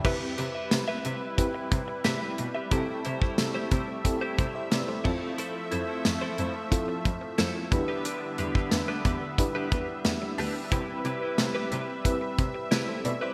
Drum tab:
CC |x---------------|--------------x-|----------------|----------------|
HH |--x-x-x-x-x-x-x-|x-x-x-x-x-x-x---|x-x-x-x-x-x-x-x-|x-x-x-x-x-x-x-o-|
TB |----x-------x---|----x-------x---|----x-------x---|----x-------x---|
SD |----o-------o---|----o-------o---|----o-------o---|----o-------o---|
BD |o-------o-o-----|o--o--o-o-o---o-|--------o-o---o-|---o--o-o-o-----|

CC |----------------|
HH |x-x-x-x-x-x-x-x-|
TB |----x-------x---|
SD |----o-------o---|
BD |o-------o-o-----|